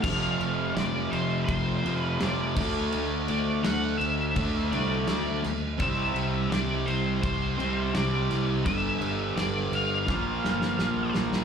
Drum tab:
CC |x-x-x-x-x-x-x-x-|x-x-x-x-x-x-x-x-|x-x-x-x-x-x-x-x-|x-x-x-x---------|
SD |----o-------o---|----o-------o-o-|----o-------o-o-|----o---o-ooo-oo|
BD |o-------o-----o-|--------o-------|o-------o-------|o-------o-------|